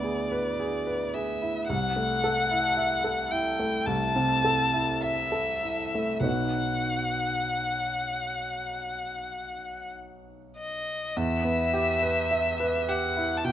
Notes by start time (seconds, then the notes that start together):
Already playing: D2 B3 E4 G#4 B4 D5
0.04 G#4
0.32 B4
0.60 G#4
0.87 B4
1.14 G#4 E5
1.42 E4
1.68 C2 F#5
1.96 A3
2.24 A4
2.51 E4
2.77 E5
3.04 A4
3.31 E4 G5
3.59 A3
3.86 C2 A5
4.16 C3
4.44 A4
4.73 E4
5.01 E5
5.32 A4
5.63 E4
5.95 A3
6.20 B1 B3 D#4 F#4
6.25 F#5
10.57 D#5
11.17 E2 E5
11.45 B3
11.73 G4
12.02 B4
12.31 E5
12.60 B4
12.89 G4 F#5
13.17 E4
13.37 A5
13.45 B2 G5